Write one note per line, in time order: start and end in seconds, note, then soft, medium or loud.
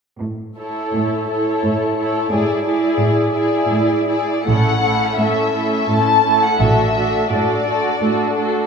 0.21 0.83 A2 soft
0.58 1.29 E4 soft
0.58 1.29 A4 soft
0.58 1.28 C#5 soft
0.94 1.53 A2 soft
1.30 1.96 E4 soft
1.30 1.97 A4 soft
1.30 1.96 C#5 soft
1.64 2.21 A2 soft
1.97 2.31 E4 soft
1.97 2.31 A4 soft
1.97 2.31 C#5 soft
2.31 2.88 A2 soft
2.31 2.65 E4 soft
2.31 2.65 G#4 soft
2.31 2.64 D5 soft
2.66 3.32 E4 soft
2.66 3.33 G#4 soft
2.66 3.33 D5 soft
2.98 3.58 A2 soft
3.34 4.06 E4 soft
3.34 4.06 G#4 soft
3.34 4.07 D5 soft
3.70 4.34 A2 soft
4.07 4.45 E4 soft
4.07 4.45 G#4 soft
4.07 4.46 D5 soft
4.45 5.07 A1 soft
4.45 5.07 A2 soft
4.45 4.82 A3 soft
4.45 4.81 C#4 soft
4.45 4.80 E4 soft
4.45 4.81 A4 soft
4.45 5.15 F#5 soft
4.82 5.18 A3 soft
4.82 5.18 C#4 soft
4.82 5.17 E4 soft
4.82 5.17 A4 soft
5.18 5.78 A2 soft
5.18 5.53 A3 soft
5.18 5.53 C#4 soft
5.18 5.53 E4 soft
5.18 5.53 A4 soft
5.18 5.89 E5 soft
5.54 5.88 A3 soft
5.54 5.88 C#4 soft
5.54 5.88 E4 soft
5.54 5.89 A4 soft
5.89 6.48 A2 soft
5.89 6.23 A3 soft
5.89 6.23 C#4 soft
5.89 6.24 E4 soft
5.89 6.24 A4 soft
5.89 6.41 A5 soft
6.24 6.57 A3 soft
6.24 6.58 C#4 soft
6.24 6.59 E4 soft
6.24 6.59 A4 soft
6.42 6.59 F#5 soft
6.58 7.18 A1 soft
6.58 7.19 A2 soft
6.58 6.93 A3 soft
6.58 6.93 D4 soft
6.58 6.94 F#4 soft
6.58 6.94 A4 soft
6.58 7.30 E5 soft
6.94 7.28 A3 soft
6.94 7.28 D4 soft
6.94 7.28 F#4 soft
6.94 7.29 A4 soft
7.29 7.90 A2 soft
7.29 7.64 A3 soft
7.29 7.64 D4 soft
7.29 7.64 F#4 soft
7.29 7.65 A4 soft
7.29 8.36 D5 soft
7.65 7.99 A3 soft
7.65 7.99 D4 soft
7.65 8.01 F#4 soft
7.65 8.00 A4 soft
8.00 8.60 A2 soft
8.00 8.34 A3 soft
8.00 8.34 D4 soft
8.00 8.36 F#4 soft
8.00 8.36 A4 soft
8.35 8.67 A3 soft
8.35 8.67 D4 soft
8.35 8.67 F#4 soft
8.35 8.67 A4 soft